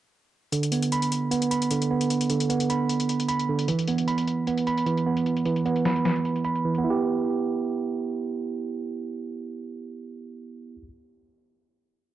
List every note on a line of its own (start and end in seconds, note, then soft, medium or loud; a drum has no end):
0.52 1.70 D3 medium
0.52 closed hi-hat medium
0.63 closed hi-hat medium
0.72 1.30 B3 medium
0.72 closed hi-hat medium
0.82 closed hi-hat medium
0.92 1.50 B5 loud
0.92 closed hi-hat medium
1.02 closed hi-hat medium
1.12 closed hi-hat medium
1.31 1.90 B3 medium
1.31 closed hi-hat medium
1.42 closed hi-hat medium
1.51 2.69 B5 medium
1.51 closed hi-hat medium
1.62 closed hi-hat medium
1.71 2.28 D3 medium
1.71 closed hi-hat medium
1.82 closed hi-hat medium
1.91 2.48 B3 medium
2.01 closed hi-hat medium
2.10 closed hi-hat medium
2.21 closed hi-hat medium
2.30 3.48 D3 medium
2.30 closed hi-hat medium
2.40 closed hi-hat medium
2.50 3.68 B3 medium
2.50 closed hi-hat medium
2.60 closed hi-hat medium
2.70 3.27 B5 medium
2.70 closed hi-hat medium
2.89 closed hi-hat medium
3.00 closed hi-hat medium
3.09 closed hi-hat medium
3.20 closed hi-hat medium
3.28 3.68 B5 medium
3.28 closed hi-hat medium
3.40 closed hi-hat soft
3.49 3.68 D3 medium
3.59 closed hi-hat medium
3.68 4.85 E3 medium
3.68 closed hi-hat medium
3.79 closed hi-hat medium
3.88 4.46 B3 medium
3.88 closed hi-hat medium
3.98 closed hi-hat medium
4.08 4.66 B5 medium
4.08 closed hi-hat medium
4.18 closed hi-hat medium
4.28 closed hi-hat medium
4.47 5.05 B3 medium
4.47 closed hi-hat medium
4.58 closed hi-hat medium
4.67 5.85 B5 medium
4.67 closed hi-hat medium
4.78 closed hi-hat medium
4.86 5.44 E3 medium
4.86 closed hi-hat medium
4.98 closed hi-hat medium
5.06 5.64 B3 medium
5.17 closed hi-hat medium
5.26 closed hi-hat medium
5.37 closed hi-hat medium
5.46 6.63 E3 medium
5.46 closed hi-hat medium
5.56 closed hi-hat medium
5.66 6.77 B3 medium
5.66 closed hi-hat medium
5.76 closed hi-hat medium
5.85 6.43 B5 medium
5.85 snare loud
5.85 closed hi-hat medium
5.96 closed hi-hat medium
6.05 snare loud
6.05 closed hi-hat medium
6.16 closed hi-hat medium
6.25 closed hi-hat medium
6.36 closed hi-hat medium
6.44 6.84 B5 medium
6.44 closed hi-hat medium
6.55 closed hi-hat medium
6.64 6.84 E3 medium
6.75 10.75 B3 medium
6.75 closed hi-hat medium
6.84 10.81 E4 medium
6.90 10.87 G4 medium